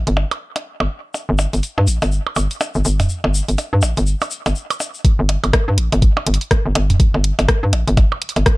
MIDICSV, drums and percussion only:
0, 0, Header, 1, 3, 480
1, 0, Start_track
1, 0, Tempo, 487805
1, 1125, Time_signature, 4, 2, 24, 8
1, 8437, End_track
2, 0, Start_track
2, 0, Title_t, "Percussion blips"
2, 165, Note_on_c, 9, 77, 70
2, 263, Note_off_c, 9, 77, 0
2, 309, Note_on_c, 9, 76, 56
2, 408, Note_off_c, 9, 76, 0
2, 549, Note_on_c, 9, 77, 44
2, 648, Note_off_c, 9, 77, 0
2, 789, Note_on_c, 9, 76, 60
2, 789, Note_on_c, 9, 77, 73
2, 888, Note_off_c, 9, 76, 0
2, 888, Note_off_c, 9, 77, 0
2, 1125, Note_on_c, 9, 77, 42
2, 1224, Note_off_c, 9, 77, 0
2, 1365, Note_on_c, 9, 77, 72
2, 1464, Note_off_c, 9, 77, 0
2, 1749, Note_on_c, 9, 77, 43
2, 1848, Note_off_c, 9, 77, 0
2, 1989, Note_on_c, 9, 77, 74
2, 2087, Note_off_c, 9, 77, 0
2, 2229, Note_on_c, 9, 76, 54
2, 2325, Note_off_c, 9, 76, 0
2, 2325, Note_on_c, 9, 76, 56
2, 2325, Note_on_c, 9, 77, 44
2, 2424, Note_off_c, 9, 76, 0
2, 2424, Note_off_c, 9, 77, 0
2, 2565, Note_on_c, 9, 77, 75
2, 2664, Note_off_c, 9, 77, 0
2, 2949, Note_on_c, 9, 77, 40
2, 3048, Note_off_c, 9, 77, 0
2, 3189, Note_on_c, 9, 77, 72
2, 3287, Note_off_c, 9, 77, 0
2, 3525, Note_on_c, 9, 77, 41
2, 3624, Note_off_c, 9, 77, 0
2, 3765, Note_on_c, 9, 77, 75
2, 3864, Note_off_c, 9, 77, 0
2, 4149, Note_on_c, 9, 76, 56
2, 4149, Note_on_c, 9, 77, 40
2, 4247, Note_off_c, 9, 76, 0
2, 4247, Note_off_c, 9, 77, 0
2, 4389, Note_on_c, 9, 77, 76
2, 4487, Note_off_c, 9, 77, 0
2, 4629, Note_on_c, 9, 76, 54
2, 4725, Note_on_c, 9, 77, 43
2, 4727, Note_off_c, 9, 76, 0
2, 4824, Note_off_c, 9, 77, 0
2, 5205, Note_on_c, 9, 77, 43
2, 5303, Note_off_c, 9, 77, 0
2, 5349, Note_on_c, 9, 76, 64
2, 5445, Note_on_c, 9, 77, 74
2, 5448, Note_off_c, 9, 76, 0
2, 5544, Note_off_c, 9, 77, 0
2, 5830, Note_on_c, 9, 77, 42
2, 5928, Note_off_c, 9, 77, 0
2, 6069, Note_on_c, 9, 76, 64
2, 6069, Note_on_c, 9, 77, 75
2, 6168, Note_off_c, 9, 76, 0
2, 6168, Note_off_c, 9, 77, 0
2, 6405, Note_on_c, 9, 77, 44
2, 6503, Note_off_c, 9, 77, 0
2, 6645, Note_on_c, 9, 77, 81
2, 6744, Note_off_c, 9, 77, 0
2, 7029, Note_on_c, 9, 77, 45
2, 7128, Note_off_c, 9, 77, 0
2, 7269, Note_on_c, 9, 77, 83
2, 7368, Note_off_c, 9, 77, 0
2, 7606, Note_on_c, 9, 77, 49
2, 7704, Note_off_c, 9, 77, 0
2, 7846, Note_on_c, 9, 77, 79
2, 7944, Note_off_c, 9, 77, 0
2, 7989, Note_on_c, 9, 76, 67
2, 8088, Note_off_c, 9, 76, 0
2, 8229, Note_on_c, 9, 77, 46
2, 8328, Note_off_c, 9, 77, 0
2, 8437, End_track
3, 0, Start_track
3, 0, Title_t, "Drums"
3, 69, Note_on_c, 9, 42, 44
3, 167, Note_off_c, 9, 42, 0
3, 309, Note_on_c, 9, 42, 30
3, 407, Note_off_c, 9, 42, 0
3, 549, Note_on_c, 9, 42, 38
3, 647, Note_off_c, 9, 42, 0
3, 1125, Note_on_c, 9, 82, 44
3, 1224, Note_off_c, 9, 82, 0
3, 1362, Note_on_c, 9, 82, 79
3, 1461, Note_off_c, 9, 82, 0
3, 1509, Note_on_c, 9, 42, 38
3, 1513, Note_on_c, 9, 82, 39
3, 1605, Note_off_c, 9, 42, 0
3, 1605, Note_on_c, 9, 42, 38
3, 1607, Note_off_c, 9, 82, 0
3, 1607, Note_on_c, 9, 82, 50
3, 1703, Note_off_c, 9, 42, 0
3, 1705, Note_off_c, 9, 82, 0
3, 1844, Note_on_c, 9, 82, 85
3, 1845, Note_on_c, 9, 42, 28
3, 1942, Note_off_c, 9, 82, 0
3, 1943, Note_off_c, 9, 42, 0
3, 1989, Note_on_c, 9, 42, 41
3, 1989, Note_on_c, 9, 82, 36
3, 2083, Note_off_c, 9, 82, 0
3, 2083, Note_on_c, 9, 82, 48
3, 2087, Note_off_c, 9, 42, 0
3, 2182, Note_off_c, 9, 82, 0
3, 2323, Note_on_c, 9, 82, 85
3, 2422, Note_off_c, 9, 82, 0
3, 2468, Note_on_c, 9, 82, 37
3, 2469, Note_on_c, 9, 42, 38
3, 2563, Note_off_c, 9, 82, 0
3, 2563, Note_on_c, 9, 82, 50
3, 2567, Note_off_c, 9, 42, 0
3, 2661, Note_off_c, 9, 82, 0
3, 2702, Note_on_c, 9, 82, 36
3, 2800, Note_off_c, 9, 82, 0
3, 2805, Note_on_c, 9, 82, 88
3, 2903, Note_off_c, 9, 82, 0
3, 2949, Note_on_c, 9, 42, 37
3, 2949, Note_on_c, 9, 45, 74
3, 2951, Note_on_c, 9, 82, 36
3, 3042, Note_off_c, 9, 82, 0
3, 3042, Note_on_c, 9, 82, 52
3, 3047, Note_off_c, 9, 42, 0
3, 3048, Note_off_c, 9, 45, 0
3, 3141, Note_off_c, 9, 82, 0
3, 3291, Note_on_c, 9, 82, 87
3, 3390, Note_off_c, 9, 82, 0
3, 3429, Note_on_c, 9, 42, 36
3, 3432, Note_on_c, 9, 82, 37
3, 3524, Note_off_c, 9, 82, 0
3, 3524, Note_on_c, 9, 82, 49
3, 3525, Note_off_c, 9, 42, 0
3, 3525, Note_on_c, 9, 42, 36
3, 3622, Note_off_c, 9, 82, 0
3, 3623, Note_off_c, 9, 42, 0
3, 3758, Note_on_c, 9, 82, 85
3, 3765, Note_on_c, 9, 42, 28
3, 3857, Note_off_c, 9, 82, 0
3, 3863, Note_off_c, 9, 42, 0
3, 3909, Note_on_c, 9, 42, 42
3, 3909, Note_on_c, 9, 82, 36
3, 4000, Note_off_c, 9, 82, 0
3, 4000, Note_on_c, 9, 82, 50
3, 4007, Note_off_c, 9, 42, 0
3, 4099, Note_off_c, 9, 82, 0
3, 4144, Note_on_c, 9, 82, 32
3, 4149, Note_on_c, 9, 42, 27
3, 4239, Note_off_c, 9, 82, 0
3, 4239, Note_on_c, 9, 82, 77
3, 4247, Note_off_c, 9, 42, 0
3, 4337, Note_off_c, 9, 82, 0
3, 4389, Note_on_c, 9, 42, 36
3, 4392, Note_on_c, 9, 82, 37
3, 4482, Note_off_c, 9, 82, 0
3, 4482, Note_on_c, 9, 82, 52
3, 4487, Note_off_c, 9, 42, 0
3, 4580, Note_off_c, 9, 82, 0
3, 4629, Note_on_c, 9, 42, 45
3, 4634, Note_on_c, 9, 82, 34
3, 4724, Note_off_c, 9, 82, 0
3, 4724, Note_on_c, 9, 82, 90
3, 4727, Note_off_c, 9, 42, 0
3, 4823, Note_off_c, 9, 82, 0
3, 4863, Note_on_c, 9, 82, 34
3, 4962, Note_off_c, 9, 82, 0
3, 4965, Note_on_c, 9, 36, 117
3, 4965, Note_on_c, 9, 42, 57
3, 5063, Note_off_c, 9, 36, 0
3, 5064, Note_off_c, 9, 42, 0
3, 5205, Note_on_c, 9, 42, 92
3, 5303, Note_off_c, 9, 42, 0
3, 5349, Note_on_c, 9, 42, 43
3, 5445, Note_off_c, 9, 42, 0
3, 5445, Note_on_c, 9, 36, 114
3, 5445, Note_on_c, 9, 37, 97
3, 5445, Note_on_c, 9, 42, 55
3, 5543, Note_off_c, 9, 36, 0
3, 5544, Note_off_c, 9, 37, 0
3, 5544, Note_off_c, 9, 42, 0
3, 5685, Note_on_c, 9, 42, 94
3, 5784, Note_off_c, 9, 42, 0
3, 5829, Note_on_c, 9, 42, 44
3, 5925, Note_off_c, 9, 42, 0
3, 5925, Note_on_c, 9, 36, 120
3, 5925, Note_on_c, 9, 42, 55
3, 6023, Note_off_c, 9, 36, 0
3, 6023, Note_off_c, 9, 42, 0
3, 6165, Note_on_c, 9, 42, 94
3, 6237, Note_off_c, 9, 42, 0
3, 6237, Note_on_c, 9, 42, 55
3, 6309, Note_off_c, 9, 42, 0
3, 6309, Note_on_c, 9, 42, 43
3, 6405, Note_off_c, 9, 42, 0
3, 6405, Note_on_c, 9, 36, 122
3, 6405, Note_on_c, 9, 37, 91
3, 6405, Note_on_c, 9, 42, 51
3, 6503, Note_off_c, 9, 36, 0
3, 6503, Note_off_c, 9, 37, 0
3, 6503, Note_off_c, 9, 42, 0
3, 6645, Note_on_c, 9, 42, 94
3, 6744, Note_off_c, 9, 42, 0
3, 6789, Note_on_c, 9, 42, 41
3, 6789, Note_on_c, 9, 45, 80
3, 6885, Note_off_c, 9, 42, 0
3, 6885, Note_on_c, 9, 36, 127
3, 6885, Note_on_c, 9, 42, 57
3, 6887, Note_off_c, 9, 45, 0
3, 6983, Note_off_c, 9, 36, 0
3, 6984, Note_off_c, 9, 42, 0
3, 7125, Note_on_c, 9, 42, 91
3, 7223, Note_off_c, 9, 42, 0
3, 7269, Note_on_c, 9, 42, 40
3, 7365, Note_off_c, 9, 42, 0
3, 7365, Note_on_c, 9, 36, 127
3, 7365, Note_on_c, 9, 37, 96
3, 7365, Note_on_c, 9, 42, 54
3, 7463, Note_off_c, 9, 36, 0
3, 7464, Note_off_c, 9, 37, 0
3, 7464, Note_off_c, 9, 42, 0
3, 7605, Note_on_c, 9, 42, 97
3, 7704, Note_off_c, 9, 42, 0
3, 7749, Note_on_c, 9, 42, 41
3, 7845, Note_off_c, 9, 42, 0
3, 7845, Note_on_c, 9, 36, 127
3, 7845, Note_on_c, 9, 42, 52
3, 7943, Note_off_c, 9, 36, 0
3, 7944, Note_off_c, 9, 42, 0
3, 8085, Note_on_c, 9, 42, 96
3, 8157, Note_off_c, 9, 42, 0
3, 8157, Note_on_c, 9, 42, 53
3, 8229, Note_off_c, 9, 42, 0
3, 8229, Note_on_c, 9, 42, 41
3, 8325, Note_off_c, 9, 42, 0
3, 8325, Note_on_c, 9, 36, 121
3, 8325, Note_on_c, 9, 37, 93
3, 8325, Note_on_c, 9, 42, 50
3, 8423, Note_off_c, 9, 36, 0
3, 8423, Note_off_c, 9, 37, 0
3, 8423, Note_off_c, 9, 42, 0
3, 8437, End_track
0, 0, End_of_file